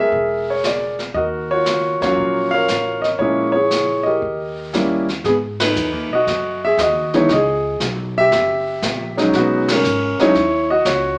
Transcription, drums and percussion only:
0.12 brush sweep, kick
0.64 snare, hi-hat pedal
0.99 snare
1.15 brush sweep, kick
1.66 snare, hi-hat pedal
2.02 snare
2.17 brush sweep, kick
2.68 snare, hi-hat pedal
3.04 snare
3.20 brush sweep, kick
3.71 snare, hi-hat pedal
4.22 brush sweep, kick
4.73 snare, hi-hat pedal
5.08 snare
5.24 brush sweep, kick, snare
5.60 snare, ride
5.76 hi-hat pedal
6.27 brush sweep, kick, snare
6.78 kick, snare, hi-hat pedal
7.13 snare
7.29 brush sweep, kick, snare
7.80 kick, snare, hi-hat pedal
8.32 brush sweep, kick, snare
8.82 kick, snare, hi-hat pedal
9.18 snare
9.33 brush sweep, kick, snare
9.68 snare, ride
9.84 hi-hat pedal
10.19 snare
10.35 brush sweep, kick, snare
10.85 kick, snare, hi-hat pedal

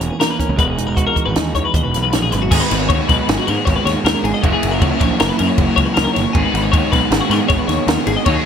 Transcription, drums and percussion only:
0.01 closed hi-hat
0.21 snare, closed hi-hat
0.40 kick, closed hi-hat
0.59 kick, closed hi-hat
0.78 closed hi-hat
0.97 kick, closed hi-hat
1.16 kick, closed hi-hat
1.36 snare, closed hi-hat
1.55 kick, closed hi-hat
1.74 kick, closed hi-hat
1.94 snare, closed hi-hat
2.13 snare, closed hi-hat
2.32 snare, closed hi-hat
2.51 kick, crash
2.71 snare, ride
2.90 kick, ride
3.09 kick, snare, ride
3.29 snare, ride
3.48 ride
3.67 kick, snare, ride
3.87 snare, ride
4.06 snare, ride
4.25 ride
4.44 kick, ride
4.63 ride
4.82 kick, ride
5.01 kick, ride
5.20 snare, ride
5.39 ride
5.58 kick, ride
5.77 kick, ride
5.97 snare, ride
6.16 snare, ride
6.35 kick, ride
6.55 snare, ride
6.73 kick, ride
6.93 kick, snare, ride
7.12 snare, ride
7.31 snare, ride
7.50 kick, snare, ride
7.69 snare, ride
7.88 snare, ride
8.07 ride
8.26 kick, ride

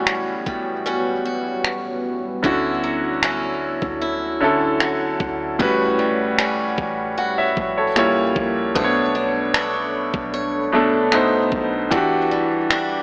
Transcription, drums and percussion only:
0.07 finger snap
0.46 kick
1.65 finger snap
2.44 kick
3.23 finger snap
3.82 kick
4.80 finger snap
5.20 kick
5.60 kick
6.39 finger snap
6.78 kick
7.57 kick
7.96 finger snap
8.36 kick
8.76 kick
9.54 finger snap
10.14 kick
11.12 finger snap
11.52 kick
11.91 kick
12.71 finger snap

